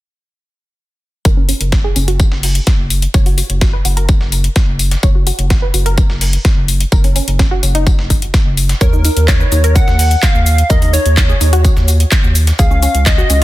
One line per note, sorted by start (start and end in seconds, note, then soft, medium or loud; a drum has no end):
1.25 1.53 F#1 loud
1.25 1.31 A#4 medium
1.25 kick loud
1.25 closed hi-hat soft
1.25 tambourine medium
1.37 1.43 C#4 medium
1.49 1.55 C#4 medium
1.49 open hi-hat loud
1.49 tambourine medium
1.61 1.89 F#1 medium
1.61 closed hi-hat medium
1.72 1.79 C#4 medium
1.72 kick loud
1.72 snare loud
1.72 closed hi-hat soft
1.72 tambourine medium
1.84 1.90 G#4 medium
1.96 2.24 F#1 medium
1.96 2.02 C#4 medium
1.96 open hi-hat medium
1.96 tambourine medium
2.08 3.05 F#4 medium
2.08 closed hi-hat medium
2.20 kick loud
2.20 closed hi-hat soft
2.20 tambourine medium
2.32 2.60 F#1 medium
2.32 snare medium
2.43 open hi-hat medium
2.55 closed hi-hat medium
2.67 kick loud
2.67 snare loud
2.67 closed hi-hat soft
2.67 tambourine medium
2.79 3.07 F#1 medium
2.90 open hi-hat loud
2.90 tambourine medium
3.02 closed hi-hat medium
3.14 3.42 F#1 loud
3.14 3.20 C#5 medium
3.14 kick loud
3.14 closed hi-hat soft
3.14 tambourine medium
3.26 3.32 F#4 medium
3.26 closed hi-hat soft
3.26 open hi-hat medium
3.38 3.44 F#4 medium
3.38 open hi-hat loud
3.38 tambourine medium
3.50 3.78 F#1 medium
3.50 closed hi-hat medium
3.61 3.68 F#4 medium
3.61 kick loud
3.61 snare loud
3.61 closed hi-hat soft
3.61 tambourine medium
3.73 3.79 B4 medium
3.85 4.13 F#1 medium
3.85 3.91 F#4 medium
3.85 open hi-hat loud
3.85 tambourine medium
3.97 4.94 A#4 medium
3.97 closed hi-hat medium
4.09 kick loud
4.09 closed hi-hat soft
4.09 tambourine medium
4.21 4.49 F#1 loud
4.21 snare soft
4.32 open hi-hat medium
4.32 tambourine medium
4.44 closed hi-hat medium
4.56 kick loud
4.56 snare loud
4.56 closed hi-hat soft
4.56 tambourine medium
4.68 4.96 F#1 medium
4.79 open hi-hat loud
4.79 tambourine medium
4.91 snare soft
4.91 closed hi-hat medium
5.03 5.31 F#1 loud
5.03 5.09 C#5 medium
5.03 kick loud
5.03 closed hi-hat medium
5.03 tambourine medium
5.15 5.21 F#4 medium
5.27 5.33 F#4 medium
5.27 open hi-hat loud
5.27 tambourine medium
5.39 5.67 F#1 medium
5.39 closed hi-hat medium
5.50 5.57 F#4 medium
5.50 kick loud
5.50 snare loud
5.50 closed hi-hat soft
5.50 tambourine medium
5.62 5.68 B4 medium
5.74 6.02 F#1 medium
5.74 5.80 F#4 medium
5.74 open hi-hat loud
5.74 tambourine medium
5.86 6.83 A#4 medium
5.86 closed hi-hat medium
5.98 kick loud
5.98 closed hi-hat soft
5.98 tambourine medium
6.09 6.38 F#1 loud
6.09 snare medium
6.21 open hi-hat loud
6.21 open hi-hat medium
6.33 closed hi-hat medium
6.45 kick loud
6.45 snare loud
6.45 closed hi-hat soft
6.45 tambourine medium
6.57 6.85 F#1 medium
6.68 open hi-hat loud
6.68 tambourine medium
6.80 closed hi-hat medium
6.92 7.20 F#1 loud
6.92 6.98 A#4 medium
6.92 kick loud
6.92 closed hi-hat soft
6.92 tambourine medium
7.04 7.10 C#4 medium
7.04 closed hi-hat soft
7.04 open hi-hat medium
7.16 7.22 C#4 medium
7.16 open hi-hat loud
7.16 tambourine medium
7.28 7.56 F#1 medium
7.28 closed hi-hat medium
7.39 7.46 C#4 medium
7.39 kick loud
7.39 snare loud
7.39 closed hi-hat soft
7.39 tambourine medium
7.51 7.57 F#4 medium
7.63 7.91 F#1 medium
7.63 7.69 C#4 medium
7.63 open hi-hat medium
7.63 tambourine medium
7.75 8.72 D#4 medium
7.75 closed hi-hat medium
7.87 kick loud
7.87 closed hi-hat soft
7.87 tambourine medium
7.98 8.27 F#1 loud
7.98 snare soft
8.10 kick medium
8.10 open hi-hat loud
8.10 tambourine medium
8.22 closed hi-hat medium
8.34 kick loud
8.34 snare loud
8.34 closed hi-hat soft
8.34 tambourine medium
8.46 8.74 F#1 medium
8.57 open hi-hat loud
8.57 tambourine medium
8.69 snare medium
8.69 closed hi-hat medium
8.81 9.09 D#2 loud
8.81 9.30 A#4 medium
8.81 8.87 C#5 medium
8.81 kick loud
8.81 closed hi-hat soft
8.81 tambourine medium
8.81 shaker soft
8.93 8.99 D#4 medium
8.93 shaker soft
9.05 9.11 D#4 medium
9.05 open hi-hat medium
9.05 tambourine medium
9.05 shaker medium
9.17 9.45 D#2 medium
9.17 closed hi-hat medium
9.17 shaker soft
9.28 9.35 D#4 medium
9.28 9.77 C#5 loud
9.28 kick loud
9.28 snare loud
9.28 clap loud
9.28 closed hi-hat soft
9.28 tambourine medium
9.28 shaker soft
9.40 9.46 B4 medium
9.40 shaker soft
9.52 9.80 D#2 medium
9.52 9.58 D#4 medium
9.52 open hi-hat medium
9.52 tambourine medium
9.52 shaker medium
9.64 10.61 A#4 medium
9.64 closed hi-hat medium
9.64 shaker soft
9.75 10.24 F#5 loud
9.75 kick loud
9.75 closed hi-hat soft
9.75 tambourine medium
9.75 shaker soft
9.88 10.16 D#2 loud
9.88 snare medium
9.88 shaker soft
9.99 open hi-hat loud
9.99 open hi-hat medium
9.99 shaker medium
10.11 closed hi-hat medium
10.11 shaker soft
10.22 10.69 F5 loud
10.22 kick loud
10.22 snare loud
10.22 clap loud
10.22 closed hi-hat soft
10.22 tambourine medium
10.22 shaker soft
10.35 10.63 D#2 medium
10.35 shaker soft
10.46 open hi-hat loud
10.46 tambourine medium
10.46 shaker medium
10.58 closed hi-hat medium
10.58 shaker soft
10.70 10.98 D#2 loud
10.70 10.76 A#4 medium
10.70 10.95 D#5 loud
10.70 kick loud
10.70 closed hi-hat medium
10.70 tambourine medium
10.70 shaker soft
10.82 10.88 D#4 medium
10.82 closed hi-hat soft
10.82 open hi-hat medium
10.82 shaker soft
10.93 11.00 D#4 medium
10.93 12.35 C#5 loud
10.93 open hi-hat medium
10.93 tambourine medium
10.93 shaker medium
11.06 11.34 D#2 medium
11.06 closed hi-hat medium
11.06 shaker soft
11.17 11.24 D#4 medium
11.17 kick loud
11.17 snare loud
11.17 clap loud
11.17 closed hi-hat medium
11.17 tambourine medium
11.17 shaker soft
11.29 11.35 G#4 medium
11.29 shaker soft
11.41 11.69 D#2 medium
11.41 11.47 D#4 medium
11.41 open hi-hat medium
11.41 tambourine medium
11.41 shaker medium
11.53 12.50 F#4 medium
11.53 closed hi-hat medium
11.53 shaker soft
11.65 kick loud
11.65 closed hi-hat soft
11.65 tambourine medium
11.65 shaker soft
11.77 12.05 D#2 loud
11.77 snare soft
11.77 shaker soft
11.88 open hi-hat medium
11.88 tambourine medium
11.88 shaker medium
12.00 closed hi-hat medium
12.00 shaker soft
12.11 kick loud
12.11 snare loud
12.11 clap loud
12.11 closed hi-hat medium
12.11 tambourine medium
12.11 shaker soft
12.24 12.52 D#2 medium
12.24 shaker soft
12.35 open hi-hat loud
12.35 tambourine medium
12.35 shaker medium
12.47 snare medium
12.47 closed hi-hat medium
12.47 shaker soft
12.59 12.87 C#2 loud
12.59 12.65 G#4 loud
12.59 13.08 F5 loud
12.59 kick loud
12.59 closed hi-hat medium
12.59 tambourine medium
12.59 shaker soft
12.71 12.77 C#4 medium
12.71 shaker soft
12.83 12.89 C#4 medium
12.83 open hi-hat loud
12.83 tambourine medium
12.83 shaker medium
12.95 13.23 C#2 medium
12.95 closed hi-hat medium
12.95 shaker soft
13.06 13.12 C#4 medium
13.06 13.44 D#5 loud
13.06 kick loud
13.06 snare loud
13.06 clap loud
13.06 closed hi-hat medium
13.06 tambourine medium
13.06 shaker soft
13.18 13.24 F#4 medium
13.18 shaker soft
13.30 13.44 C#2 medium
13.30 13.36 C#4 medium
13.30 open hi-hat medium
13.30 tambourine medium
13.30 shaker medium